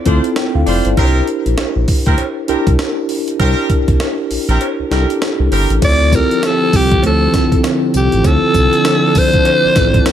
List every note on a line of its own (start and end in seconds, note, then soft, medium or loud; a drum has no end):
0.00 0.05 C4 medium
0.00 0.06 E4 medium
0.00 0.06 F4 medium
0.00 0.06 A4 medium
0.05 0.21 D2 medium
0.05 0.65 C4 medium
0.05 0.27 D4 medium
0.05 0.36 E4 medium
0.05 0.27 E4 medium
0.05 0.36 F4 medium
0.05 0.27 F4 medium
0.05 0.37 A4 loud
0.05 0.27 C5 medium
0.05 kick medium
0.05 closed hi-hat medium
0.24 closed hi-hat medium
0.36 0.54 G5 medium
0.36 snare loud
0.36 closed hi-hat medium
0.36 cowbell medium
0.55 0.64 D2 medium
0.55 0.67 A4 medium
0.55 0.66 F5 medium
0.67 0.81 F1 medium
0.67 0.87 D4 medium
0.67 0.87 E4 medium
0.67 0.88 F4 medium
0.67 0.85 F4 medium
0.67 0.88 C5 medium
0.67 0.85 D5 medium
0.67 open hi-hat medium
0.85 0.95 G1 medium
0.85 0.96 E4 medium
0.85 1.15 C5 medium
0.85 closed hi-hat medium
0.97 1.22 C2 loud
0.97 1.25 C4 loud
0.97 1.78 D4 medium
0.97 1.25 E4 loud
0.97 1.78 E4 medium
0.97 1.26 G4 medium
0.97 1.78 G4 medium
0.97 1.26 A#4 loud
0.97 1.79 A#4 loud
0.97 kick loud
0.97 closed hi-hat medium
0.97 cowbell medium
1.28 closed hi-hat medium
1.46 1.55 A#1 medium
1.46 closed hi-hat medium
1.58 1.65 A#1 soft
1.58 snare loud
1.58 closed hi-hat medium
1.58 cowbell medium
1.76 1.85 A#1 medium
1.88 kick medium
1.88 open hi-hat medium
2.06 2.16 D2 medium
2.06 2.22 C4 medium
2.06 2.22 E4 medium
2.06 2.22 G4 medium
2.06 2.22 A#4 medium
2.06 kick medium
2.06 closed hi-hat soft
2.18 closed hi-hat medium
2.18 cowbell medium
2.48 2.56 C2 soft
2.48 2.69 C4 medium
2.48 3.08 D4 medium
2.48 2.69 E4 medium
2.48 3.08 E4 medium
2.48 2.69 G4 medium
2.48 3.08 G4 medium
2.48 2.69 A#4 medium
2.48 3.08 A#4 loud
2.48 closed hi-hat medium
2.67 2.77 C2 medium
2.67 kick medium
2.67 closed hi-hat medium
2.79 snare loud
2.79 closed hi-hat medium
2.79 cowbell medium
3.09 open hi-hat medium
3.28 closed hi-hat medium
3.39 3.54 C2 loud
3.39 3.68 C4 loud
3.39 4.20 D4 medium
3.39 3.68 E4 medium
3.39 4.21 E4 medium
3.39 3.68 G4 medium
3.39 4.21 G4 medium
3.39 3.68 A#4 loud
3.39 4.21 A#4 medium
3.39 kick medium
3.39 closed hi-hat medium
3.39 cowbell medium
3.70 kick medium
3.70 closed hi-hat medium
3.88 3.98 C2 medium
3.88 kick loud
3.88 closed hi-hat medium
4.00 snare loud
4.00 closed hi-hat medium
4.00 cowbell medium
4.30 4.38 A#1 soft
4.30 open hi-hat medium
4.48 4.58 A#1 medium
4.48 4.64 C4 medium
4.48 4.64 E4 medium
4.48 4.64 G4 medium
4.48 4.64 A#4 medium
4.48 closed hi-hat soft
4.61 closed hi-hat medium
4.61 cowbell medium
4.79 4.84 C2 soft
4.90 5.06 C2 loud
4.90 5.11 C4 medium
4.90 5.50 D4 loud
4.90 5.11 E4 medium
4.90 5.50 E4 medium
4.90 5.12 G4 medium
4.90 5.50 G4 medium
4.90 5.51 A4 loud
4.90 5.12 A#4 medium
4.90 snare medium
4.90 closed hi-hat medium
5.10 closed hi-hat medium
5.22 snare loud
5.22 closed hi-hat medium
5.22 cowbell medium
5.39 5.49 C2 medium
5.51 5.66 G1 medium
5.51 5.72 C4 medium
5.51 5.72 E4 medium
5.51 5.72 G4 medium
5.51 5.72 A#4 medium
5.51 open hi-hat medium
5.70 5.80 A1 medium
5.70 closed hi-hat medium
5.81 6.21 D2 loud
5.81 10.12 D3 medium
5.81 10.12 F3 medium
5.81 6.03 C4 medium
5.81 8.22 C4 medium
5.81 6.04 E4 medium
5.81 6.04 F4 medium
5.81 6.04 A4 medium
5.81 6.17 D5 loud
5.81 kick loud
5.81 closed hi-hat medium
5.81 crash loud
5.81 tambourine medium
5.81 cowbell medium
6.12 6.93 C4 medium
6.12 6.93 E4 medium
6.12 6.93 F4 medium
6.12 6.93 G4 medium
6.12 6.48 A#4 loud
6.12 kick loud
6.12 closed hi-hat medium
6.12 tambourine medium
6.31 closed hi-hat medium
6.42 6.78 A4 loud
6.42 snare loud
6.42 closed hi-hat medium
6.42 tambourine medium
6.42 cowbell medium
6.73 6.97 C2 loud
6.73 7.05 G4 loud
6.73 kick loud
6.73 open hi-hat medium
6.73 tambourine medium
6.91 kick medium
6.91 closed hi-hat soft
7.03 7.28 D2 loud
7.03 7.62 A4 medium
7.03 closed hi-hat medium
7.03 cowbell medium
7.33 7.92 C4 medium
7.33 7.93 E4 medium
7.33 7.93 F4 medium
7.33 7.93 A4 medium
7.33 kick loud
7.33 snare medium
7.33 closed hi-hat medium
7.33 tambourine medium
7.52 kick medium
7.52 closed hi-hat medium
7.64 snare loud
7.64 closed hi-hat medium
7.64 tambourine medium
7.64 cowbell medium
7.94 8.09 C2 loud
7.94 8.28 G4 medium
7.94 closed hi-hat medium
7.94 tambourine medium
8.12 8.22 A1 medium
8.12 closed hi-hat medium
8.24 8.39 D2 loud
8.24 8.46 C4 medium
8.24 10.12 D4 medium
8.24 8.47 E4 medium
8.24 8.46 F4 medium
8.24 8.47 A4 medium
8.24 9.19 A4 loud
8.24 kick loud
8.24 closed hi-hat medium
8.24 tambourine medium
8.24 cowbell medium
8.54 8.69 C2 medium
8.54 9.36 C4 medium
8.54 9.36 E4 medium
8.54 9.36 F4 medium
8.54 9.36 A4 medium
8.54 kick medium
8.54 closed hi-hat medium
8.54 tambourine medium
8.73 closed hi-hat medium
8.85 snare loud
8.85 closed hi-hat medium
8.85 tambourine medium
8.85 cowbell medium
9.15 10.12 C5 loud
9.15 kick medium
9.15 open hi-hat medium
9.15 tambourine medium
9.33 kick medium
9.33 closed hi-hat medium
9.45 closed hi-hat medium
9.45 cowbell medium
9.64 9.69 A1 medium
9.76 10.00 A1 medium
9.76 10.12 C4 medium
9.76 10.12 E4 medium
9.76 10.12 F4 medium
9.76 10.12 A4 medium
9.76 kick loud
9.76 snare medium
9.76 closed hi-hat medium
9.76 tambourine medium
9.94 kick loud
9.94 closed hi-hat medium
10.06 snare loud
10.06 closed hi-hat medium
10.06 tambourine medium
10.06 cowbell medium